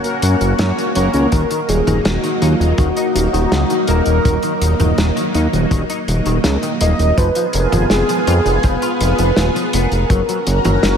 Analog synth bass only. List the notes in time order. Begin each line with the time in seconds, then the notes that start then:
0.23 F#2
0.41 F#1
0.59 F#2
0.96 F#1
1.14 C#2
1.32 D#1
1.69 D#1
1.87 D#1
2.05 D#1
2.42 D#2
2.60 D#1
2.78 D#1
3.15 D#1
3.33 D#1
3.52 C#2
3.88 D#1
4.07 D#1
4.25 D#1
4.62 D#1
4.80 D#1
4.98 D#1
5.35 D#2
5.53 D#1
5.71 D#1
6.08 D#1
6.26 D#1
6.45 C#2
6.81 D#1
6.99 D#1
7.18 F1
7.54 F1
7.73 F1
7.91 F1
8.27 F2
8.46 F1
8.64 F1
9.01 F1
9.19 F1
9.37 D#1
9.74 F1
9.92 F1
10.10 F#1
10.47 F#1
10.65 F#1
10.84 F#1